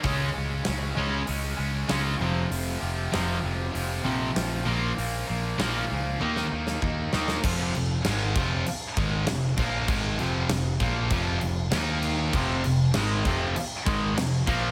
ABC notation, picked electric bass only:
X:1
M:4/4
L:1/8
Q:1/4=98
K:Fm
V:1 name="Picked electric bass" clef=bass
D,, D,, D,, D,, D,, D,, D,, F,,, | F,,, F,,, F,,, F,,, F,,, B,,, B,,, B,,, | B,,, B,,, B,,, D,, E,, E,, E,, E,, | F,,, F,,, A,,, F,,, z A,,, F,,, B,,, |
A,,, F,,, F,,, B,,, F,,, F,,, E,,2 | F,,, F,,, A,,, F,,, z A,,, F,,, B,,, |]